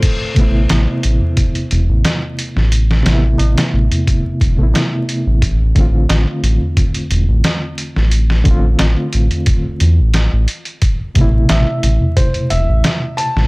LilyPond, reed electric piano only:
\new Staff \with { instrumentName = "Reed electric piano" } { \time 4/4 \key a \minor \tempo 4 = 89 r8 <c a b e'>2.~ <c a b e'>8~ | <c a b e'>8 <c a b e'>2~ <c a b e'>16 <c a b e'>4~ <c a b e'>16 | r8 <d a c' f'>2.~ <d a c' f'>8~ | <d a c' f'>8 <d a c' f'>2~ <d a c' f'>16 r4 r16 |
r8 <b, c a e'>2.~ <b, c a e'>8 | }